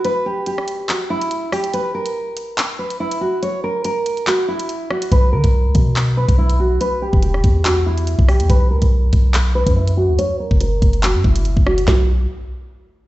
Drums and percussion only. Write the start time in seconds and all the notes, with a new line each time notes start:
0.05 closed hi-hat
0.46 closed hi-hat
0.58 cross-stick
0.68 closed hi-hat
0.89 clap, closed hi-hat
1.21 closed hi-hat
1.31 closed hi-hat
1.52 cross-stick, open hi-hat
1.64 closed hi-hat
1.74 closed hi-hat
2.06 closed hi-hat
2.37 closed hi-hat
2.58 clap, closed hi-hat
2.90 closed hi-hat
3.11 closed hi-hat
3.43 closed hi-hat
3.84 closed hi-hat
4.06 closed hi-hat
4.17 closed hi-hat
4.27 clap, closed hi-hat
4.59 closed hi-hat
4.69 closed hi-hat
4.90 cross-stick
5.02 closed hi-hat
5.12 kick, closed hi-hat
5.44 kick, closed hi-hat
5.75 kick, closed hi-hat
5.96 clap, closed hi-hat
6.29 kick, closed hi-hat
6.50 closed hi-hat
6.81 closed hi-hat
7.13 kick
7.23 closed hi-hat
7.34 cross-stick
7.44 kick, closed hi-hat
7.65 clap, closed hi-hat
7.98 closed hi-hat
8.07 closed hi-hat
8.19 kick
8.29 cross-stick, open hi-hat
8.40 closed hi-hat
8.50 kick, closed hi-hat
8.82 kick, closed hi-hat
9.13 kick, closed hi-hat
9.34 clap, closed hi-hat
9.67 kick, closed hi-hat
9.88 closed hi-hat
10.19 closed hi-hat
10.51 kick
10.61 closed hi-hat
10.82 kick, closed hi-hat
10.93 closed hi-hat
11.03 clap, closed hi-hat
11.24 kick
11.36 closed hi-hat
11.45 closed hi-hat
11.57 kick
11.67 cross-stick
11.78 closed hi-hat
11.88 kick, snare, clap